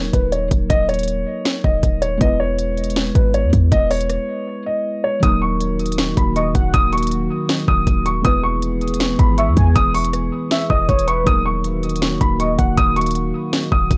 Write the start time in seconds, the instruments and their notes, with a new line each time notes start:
Already playing: synth keys F#3 A#3 D#4 A#4
0.13 808-style bass D#1, grand piano B4, kick, closed hi-hat
0.32 grand piano C#5, closed hi-hat
0.51 808-style bass D#1, kick, closed hi-hat
0.70 808-style bass D#1, grand piano D#5, kick, closed hi-hat
0.89 grand piano C#5, closed hi-hat
0.94 closed hi-hat
0.99 closed hi-hat
1.03 closed hi-hat
1.08 closed hi-hat
1.45 snare, closed hi-hat
1.64 808-style bass D#1, grand piano D#5, kick
1.83 808-style bass D#1, kick, closed hi-hat
2.02 grand piano C#5, closed hi-hat
2.17 808-style bass E1, synth keys G#3 B3 E4, grand piano D#5, kick, closed hi-hat
2.23 synth keys B4
2.40 grand piano C#5
2.59 closed hi-hat
2.77 closed hi-hat
2.84 closed hi-hat
2.90 closed hi-hat
2.96 snare, closed hi-hat
3.15 808-style bass G#1, grand piano B4, kick, closed hi-hat
3.34 grand piano C#5, closed hi-hat
3.44 808-style bass E2
3.53 808-style bass E2, kick, closed hi-hat
3.72 808-style bass E1, grand piano D#5, kick, closed hi-hat
3.91 grand piano C#5, closed hi-hat, open hi-hat
4.01 closed hi-hat
4.10 cross-stick, closed hi-hat
4.66 grand piano D#5
5.04 grand piano C#5
5.20 808-style bass D#1, analog synth pad D#3 A#3 F#4, synth keys F#3 A#3 D#4, grand piano D#6, kick, closed hi-hat
5.25 synth keys A#4
5.42 grand piano C#6
5.60 closed hi-hat
5.79 closed hi-hat
5.86 closed hi-hat
5.92 closed hi-hat
5.98 snare, closed hi-hat
6.17 808-style bass D#1, grand piano B5, kick, closed hi-hat
6.36 soft synth lead D#5, grand piano C#6, closed hi-hat
6.55 808-style bass D#1, soft synth lead F#5, kick, closed hi-hat
6.74 808-style bass D#1, grand piano D#6, kick, closed hi-hat
6.93 grand piano C#6, closed hi-hat
6.98 closed hi-hat
7.03 closed hi-hat
7.07 closed hi-hat
7.11 closed hi-hat
7.49 snare, closed hi-hat
7.68 808-style bass D#1, grand piano D#6, kick
7.87 808-style bass D#1, kick, closed hi-hat
8.06 grand piano C#6, closed hi-hat
8.21 808-style bass E1, analog synth pad E3 B3 G#4, synth keys G#3 B3 E4, grand piano D#6, kick, closed hi-hat
8.27 synth keys B4
8.44 grand piano C#6
8.62 closed hi-hat
8.81 closed hi-hat
8.88 closed hi-hat
8.94 closed hi-hat
9.00 snare, closed hi-hat
9.19 808-style bass G#1, grand piano B5, kick, closed hi-hat
9.38 soft synth lead E5, grand piano C#6, closed hi-hat
9.48 808-style bass E2
9.57 808-style bass E2, soft synth lead G#5, kick, closed hi-hat
9.76 808-style bass E1, grand piano D#6, kick, closed hi-hat
9.94 grand piano C#6, closed hi-hat, open hi-hat
10.04 closed hi-hat
10.13 cross-stick, closed hi-hat
10.51 soft synth lead E5, snare, closed hi-hat
10.70 808-style bass E1, soft synth lead D#5, grand piano D#6, kick
10.89 808-style bass E1, soft synth lead C#5, kick, closed hi-hat
10.99 closed hi-hat
11.08 soft synth lead B4, grand piano C#6, closed hi-hat
11.24 808-style bass D#1, analog synth pad D#3 A#3 F#4, synth keys F#3 A#3 D#4, grand piano D#6, kick, closed hi-hat
11.29 synth keys A#4
11.45 grand piano C#6
11.64 closed hi-hat
11.83 closed hi-hat
11.89 closed hi-hat
11.96 closed hi-hat
12.02 snare, closed hi-hat
12.21 808-style bass D#1, grand piano B5, kick, closed hi-hat
12.40 soft synth lead D#5, grand piano C#6, closed hi-hat
12.59 808-style bass D#1, soft synth lead F#5, kick, closed hi-hat
12.77 808-style bass D#1, grand piano D#6, kick, closed hi-hat
12.96 grand piano C#6, closed hi-hat
13.01 closed hi-hat
13.06 closed hi-hat
13.11 closed hi-hat
13.15 closed hi-hat
13.53 snare, closed hi-hat
13.72 808-style bass D#1, grand piano D#6, kick
13.91 808-style bass D#1, kick, closed hi-hat